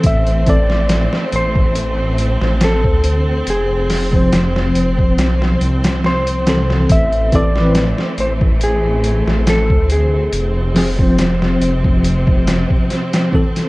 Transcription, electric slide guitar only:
X:1
M:4/4
L:1/8
Q:"Swing 16ths" 1/4=70
K:Am
V:1 name="Electric slide guitar"
e d2 c3 A2 | _A4 z2 c2 | e d2 c ^G2 A G- | ^G4- G z3 |]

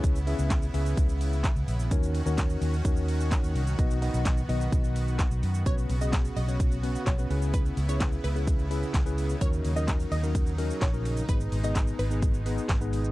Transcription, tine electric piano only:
X:1
M:4/4
L:1/16
Q:1/4=128
K:B
V:1 name="Tine electric piano"
[CEGBc] z [CEGBe]3 z [CEGBe]6 z4 | [CDFAc]2 z [CDFAc]4 z [CDFAc]6 z2 | [B,DFBd]2 [B,DFBd]3 z [B,DFBd]6 z4 | [B,CFB]2 z [B,CFG]3 z [B,CFc]2 z [B,CFB]2 z [B,CFB] [CEGB]2- |
[CEGB]2 z [CEGB]3 z [CEGB]2 z [CEGB]2 z [CEGB]2 z | [CDFA]2 z [CDFA]3 z [CDFA]2 z [CDFA]2 z [CDFA]2 z | [B,DGB]2 z [B,DGB]3 z [B,DGB]2 z [B,DGB]2 z [B,DGB]2 z |]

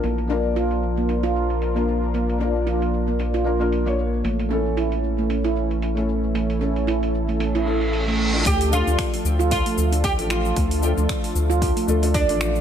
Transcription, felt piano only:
X:1
M:4/4
L:1/16
Q:"Swing 16ths" 1/4=114
K:none
V:1 name="Felt piano"
[_B,DF_B]2 [B,DFB]8- [B,DFB]3 [B,DFB]3- | [_B,DF_B]2 [B,DFB]8 [B,DFB] [B,DFB]2 [B,DF^c]3 | z2 [A,^CEA]8- [A,CEA]3 [A,CEA]3- | [A,^CEA]2 [A,CEA]8 [A,CEA]4- [A,CEA] [A,DFA]- |
[A,DFA]2 [A,DFA]8- [A,DFA]3 [A,DFA]3- | [A,DFA]2 [A,DFA]8 [A,DFA] [A,DFA]2 [A,DFd]3 |]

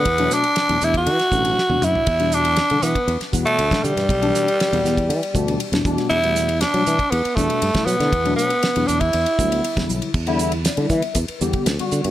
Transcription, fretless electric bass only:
X:1
M:4/4
L:1/16
Q:1/4=119
K:Em
V:1 name="Fretless electric bass" clef=bass
E,,2 z3 E,, E,,2 E, z A,,,2 z E,, F,, z | E,,4- E,, D, E, z E,, z E,, z D,, z D, G,, | B,,,2 z3 E,, E,,2 E, z D,,2 z E,, E,, z | E,,4- E,, F, E, z E,, z E,, z G,, z F, D, |
E,,2 z3 E,, E,,2 E,, z D,,2 z E,, B,,, z | E,,4- E,, D, E, z E,, z E,, z D,, z D, G,, |]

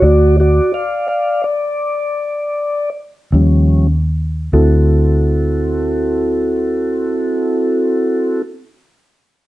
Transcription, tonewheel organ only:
X:1
M:12/8
L:1/8
Q:3/8=48
K:Dmix
V:1 name="Tonewheel organ"
[Fd] [Fd] [d=f] [df] d4 z [=F,G,_D] z2 | [CEFA]12 |]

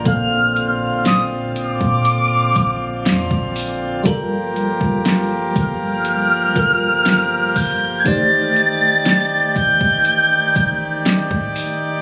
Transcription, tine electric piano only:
X:1
M:4/4
L:1/8
Q:1/4=60
K:Gm
V:1 name="Tine electric piano"
[B,,B,Af]8 | [G,FAB]4- [G,FAB] [G,FAB]3 | [A,EGcd]8 |]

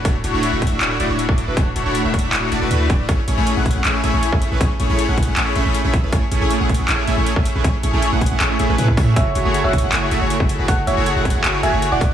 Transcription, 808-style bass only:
X:1
M:4/4
L:1/16
Q:1/4=158
K:A
V:1 name="808-style bass" clef=bass
D,,,2 D,,, D,,,2 D,,,2 D,,, D,,,2 D,,, D,,,2 D,,,2 D,,, | D,,,2 D,,, D,,,2 D,,,2 D,,, D,,,2 D,,, D,,, D,,2 D,,,2 | A,,,2 A,,, A,,,2 A,,,2 A,,, A,,,2 A,,, A,,,2 A,,,2 A,,, | A,,,2 A,,, A,,,2 A,,,2 A,,, A,,,2 A,,, A,,,2 A,,,2 A,,, |
A,,,2 A,,, A,,,2 A,,,2 A,,, A,,,2 A,,, A,,,2 A,,,2 A,,, | A,,,2 A,,, A,,,2 A,,,2 A,,, A,,,2 A,,, A,,, A,,2 A,,2 | F,,,2 F,,, F,,,2 F,,,2 F,,, F,,,2 F,,, F,,,2 F,,,2 F,,, | F,,,2 F,,, F,,,2 F,,,2 F,,, F,,,2 F,,, F,,,2 D,,,2 z |]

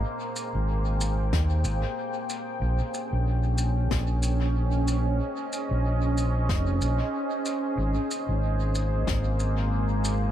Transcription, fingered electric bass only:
X:1
M:4/4
L:1/16
Q:"Swing 16ths" 1/4=93
K:Bbdor
V:1 name="Fingered electric bass" clef=bass
z3 A,,,4- A,,, E,,2 A,,, z4 z | B,,, z2 B,,,4- B,,, B,,,8 | z3 B,,,4- B,,, F,,,2 B,,, z4 z | A,,, z2 A,,,4- A,,, A,,,8 |]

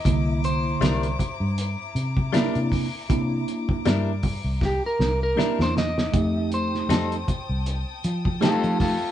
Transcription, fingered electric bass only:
X:1
M:4/4
L:1/16
Q:"Swing 16ths" 1/4=79
K:Cmix
V:1 name="Fingered electric bass" clef=bass
C,,4 C,,2 z G,,2 z C,3 C,2 z | C,2 z2 G,,3 C,,2 z C,,2 z E,,3 | F,,4 F,,2 z C,,2 z F,3 F,2 z |]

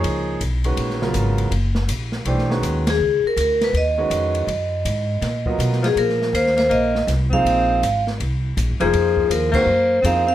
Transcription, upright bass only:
X:1
M:4/4
L:1/8
Q:"Swing" 1/4=162
K:Dbmix
V:1 name="Upright bass" clef=bass
D,,2 C,,2 B,,,2 A,,,2 | G,,,2 B,,,2 C,,2 E,,2 | D,, z =D,,2 E,,2 F,,2 | G,,2 A,,2 B,,2 C,2 |
B,,2 E,,2 B,,,2 =C,,2 | B,,,2 A,,,2 =C,,2 (3B,,, A,,, F,,, | F,,2 E,,2 G,,2 F,,2 |]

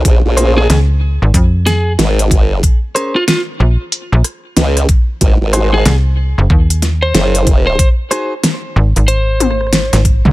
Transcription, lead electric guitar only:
X:1
M:4/4
L:1/16
Q:"Swing 16ths" 1/4=93
K:Bbm
V:1 name="Lead electric guitar"
z3 A z6 A z4 z | z3 F F z8 z3 | z3 A z6 z c3 z c | z8 c6 z2 |]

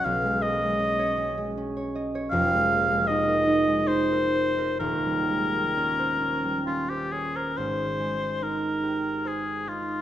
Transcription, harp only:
X:1
M:3/4
L:1/16
Q:1/4=72
K:Ab
V:1 name="Harp"
[_C,,^C^c] A, B, A, D d D A, D d e d | [F,,,F,,] A, B, A, E B E A, E B c B | [E,,,E,,] G, A, G, D c D G, D c d c | A,,,2 A,2 E2 G2 c2 E2 |]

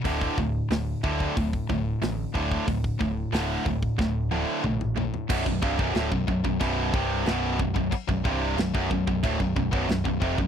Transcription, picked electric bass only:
X:1
M:4/4
L:1/16
Q:1/4=92
K:Bm
V:1 name="Picked electric bass" clef=bass
D,,,2 D,,,2 D,,,2 D,,2 D,,,2 D,,,2 A,,,2 D,,,2 | D,,,2 D,,,2 D,,,2 D,,,2 D,,,4 ^A,,,4 | B,,,, B,,,, =C,,, B,,,, D,,, B,,,, B,,,, B,,,, B,,,,2 C,,,2 B,,,,2 B,,,, B,,,, | z B,,,, =C,,,2 B,,,, B,,,, B,,,, B,,,, D,,, B,,,, B,,,, B,,,, B,,,, B,,,, ^E,,, B,,,, |]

